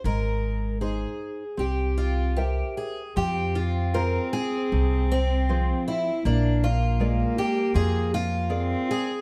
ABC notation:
X:1
M:4/4
L:1/8
Q:1/4=78
K:Cphr
V:1 name="Nylon-string guitar"
A,2 [EAc]2 C2 [Bc=e]2 | [K:Fm] F,2 [FAc]2 C,2 [F,Ac]2 | B,2 [A,B=d]2 F,2 [ABd]2 |]
V:2 name="Twelve-string acoustic guitar"
B2 A2 G F G A | [K:Fm] G F B A2 C2 =E | =D F2 G A F2 A |]
V:3 name="Cello"
z8 | [K:Fm] C8 | B,6 C2 |]
V:4 name="Upright bass" clef=bass
A,,,4 C,,4 | [K:Fm] F,,4 C,,4 | B,,,4 F,,4 |]